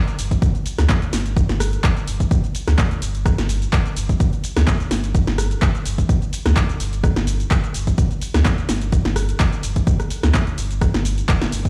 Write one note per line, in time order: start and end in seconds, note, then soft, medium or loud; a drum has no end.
0.08 closed hi-hat soft
0.08 shaker soft
0.18 0.35 G1 medium
0.18 open hi-hat loud
0.18 shaker medium
0.31 kick medium
0.31 closed hi-hat medium
0.31 shaker soft
0.42 0.51 G1 loud
0.42 kick loud
0.42 closed hi-hat medium
0.42 shaker soft
0.55 closed hi-hat soft
0.55 shaker soft
0.66 open hi-hat loud
0.66 shaker medium
0.78 0.86 D2 medium
0.78 cross-stick medium
0.78 snare medium
0.78 closed hi-hat medium
0.78 shaker soft
0.89 kick loud
0.89 clap loud
0.89 closed hi-hat medium
0.89 shaker soft
1.02 closed hi-hat soft
1.02 shaker soft
1.13 1.42 G1 medium
1.13 snare medium
1.13 open hi-hat loud
1.13 shaker medium
1.26 closed hi-hat medium
1.26 shaker soft
1.37 kick loud
1.37 closed hi-hat medium
1.37 shaker soft
1.49 1.78 G1 loud
1.49 snare medium
1.49 closed hi-hat soft
1.49 shaker soft
1.60 cross-stick medium
1.60 open hi-hat loud
1.60 shaker medium
1.73 closed hi-hat medium
1.73 shaker soft
1.84 1.92 G1 loud
1.84 kick loud
1.84 clap loud
1.84 closed hi-hat medium
1.84 shaker soft
1.97 closed hi-hat soft
1.97 shaker soft
2.07 2.24 G1 medium
2.07 open hi-hat loud
2.07 shaker medium
2.20 kick medium
2.20 closed hi-hat soft
2.20 shaker soft
2.31 2.40 G1 loud
2.31 kick loud
2.31 closed hi-hat soft
2.31 shaker soft
2.44 closed hi-hat soft
2.44 shaker soft
2.55 open hi-hat loud
2.55 shaker medium
2.67 2.75 D2 medium
2.67 cross-stick medium
2.67 snare medium
2.67 closed hi-hat soft
2.67 shaker soft
2.78 kick loud
2.78 clap loud
2.78 closed hi-hat medium
2.78 shaker soft
2.91 closed hi-hat soft
2.91 shaker soft
3.02 3.31 G1 medium
3.02 open hi-hat loud
3.02 shaker medium
3.15 closed hi-hat soft
3.15 shaker soft
3.26 kick loud
3.26 cross-stick medium
3.26 closed hi-hat medium
3.26 shaker soft
3.38 3.67 G1 loud
3.38 snare medium
3.38 closed hi-hat soft
3.38 shaker soft
3.49 open hi-hat loud
3.49 shaker medium
3.62 closed hi-hat soft
3.62 shaker soft
3.73 3.81 G1 medium
3.73 kick loud
3.73 clap loud
3.73 closed hi-hat soft
3.73 shaker soft
3.86 closed hi-hat soft
3.86 shaker soft
3.96 4.13 G1 medium
3.96 open hi-hat loud
3.96 shaker medium
4.09 kick medium
4.09 closed hi-hat soft
4.09 shaker soft
4.20 4.29 G1 loud
4.20 kick loud
4.20 closed hi-hat medium
4.20 shaker soft
4.33 closed hi-hat soft
4.33 shaker soft
4.44 open hi-hat loud
4.44 shaker medium
4.57 4.64 D2 medium
4.57 cross-stick medium
4.57 snare medium
4.57 closed hi-hat medium
4.57 shaker soft
4.67 kick loud
4.67 clap loud
4.67 closed hi-hat medium
4.67 shaker soft
4.80 closed hi-hat soft
4.80 shaker soft
4.91 5.20 G1 medium
4.91 snare medium
4.91 open hi-hat loud
4.91 shaker medium
5.04 closed hi-hat soft
5.04 shaker soft
5.15 kick loud
5.15 closed hi-hat medium
5.15 shaker soft
5.27 5.56 G1 loud
5.27 snare medium
5.27 closed hi-hat soft
5.27 shaker soft
5.38 cross-stick medium
5.38 open hi-hat loud
5.38 shaker medium
5.51 closed hi-hat medium
5.51 shaker soft
5.62 5.70 G1 loud
5.62 kick loud
5.62 clap loud
5.62 closed hi-hat soft
5.62 shaker soft
5.75 closed hi-hat soft
5.75 shaker soft
5.85 6.02 G1 medium
5.85 open hi-hat loud
5.85 shaker medium
5.98 kick medium
5.98 closed hi-hat soft
5.98 shaker soft
6.09 6.18 G1 loud
6.09 kick loud
6.09 closed hi-hat medium
6.09 shaker soft
6.22 closed hi-hat soft
6.22 shaker soft
6.33 open hi-hat loud
6.33 shaker medium
6.45 6.53 D2 medium
6.45 cross-stick medium
6.45 snare medium
6.45 closed hi-hat medium
6.45 shaker soft
6.56 kick loud
6.56 clap loud
6.56 closed hi-hat medium
6.56 shaker soft
6.69 closed hi-hat soft
6.69 shaker soft
6.80 7.09 G1 medium
6.80 open hi-hat loud
6.80 shaker medium
6.93 closed hi-hat medium
6.93 shaker soft
7.04 kick loud
7.04 cross-stick medium
7.04 closed hi-hat medium
7.04 shaker soft
7.16 7.45 G1 loud
7.16 snare medium
7.16 closed hi-hat soft
7.16 shaker soft
7.27 open hi-hat loud
7.27 shaker medium
7.40 closed hi-hat medium
7.40 shaker soft
7.51 7.59 G1 loud
7.51 kick loud
7.51 clap loud
7.51 closed hi-hat medium
7.51 shaker soft
7.64 closed hi-hat soft
7.64 shaker soft
7.74 7.91 G1 medium
7.74 open hi-hat loud
7.74 shaker medium
7.87 kick medium
7.87 closed hi-hat medium
7.87 shaker soft
7.98 8.06 G1 loud
7.98 kick loud
7.98 closed hi-hat medium
7.98 shaker soft
8.11 closed hi-hat soft
8.11 shaker soft
8.22 open hi-hat loud
8.22 shaker medium
8.34 8.42 D2 medium
8.34 cross-stick medium
8.34 snare medium
8.34 closed hi-hat medium
8.34 shaker soft
8.45 kick loud
8.45 clap loud
8.45 closed hi-hat medium
8.45 shaker soft
8.58 closed hi-hat soft
8.58 shaker soft
8.69 8.98 G1 medium
8.69 snare medium
8.69 open hi-hat loud
8.69 shaker medium
8.82 closed hi-hat medium
8.82 shaker soft
8.92 kick loud
8.92 closed hi-hat medium
8.92 shaker soft
9.05 9.34 G1 loud
9.05 snare medium
9.05 closed hi-hat soft
9.05 shaker soft
9.16 cross-stick medium
9.16 open hi-hat loud
9.16 shaker medium
9.29 closed hi-hat medium
9.29 shaker soft
9.40 9.48 G1 medium
9.40 kick loud
9.40 clap loud
9.40 closed hi-hat medium
9.40 shaker soft
9.52 closed hi-hat soft
9.52 shaker soft
9.63 9.80 G1 medium
9.63 open hi-hat loud
9.63 shaker medium
9.76 kick medium
9.76 closed hi-hat medium
9.76 shaker soft
9.87 9.95 G1 loud
9.87 kick loud
9.87 closed hi-hat medium
9.87 shaker soft
10.00 cross-stick medium
10.00 closed hi-hat soft
10.00 shaker soft
10.10 open hi-hat loud
10.10 shaker medium
10.23 10.31 D2 medium
10.23 cross-stick medium
10.23 snare medium
10.23 closed hi-hat medium
10.23 shaker soft
10.34 kick loud
10.34 clap loud
10.34 closed hi-hat medium
10.34 shaker soft
10.47 closed hi-hat soft
10.47 shaker soft
10.58 10.87 G1 medium
10.58 open hi-hat loud
10.58 shaker medium
10.71 closed hi-hat medium
10.71 shaker soft
10.81 kick loud
10.81 cross-stick medium
10.81 closed hi-hat medium
10.81 shaker soft
10.94 11.23 G1 loud
10.94 snare medium
10.94 closed hi-hat soft
10.94 shaker soft
11.05 open hi-hat loud
11.05 shaker medium
11.18 closed hi-hat medium
11.18 shaker soft
11.29 11.45 D1 loud
11.29 kick loud
11.29 clap loud
11.29 closed hi-hat medium
11.29 shaker soft
11.42 snare medium
11.42 closed hi-hat soft
11.42 shaker soft
11.52 11.69 G1 medium
11.52 open hi-hat loud
11.52 shaker medium
11.65 kick medium
11.65 closed hi-hat medium
11.65 shaker soft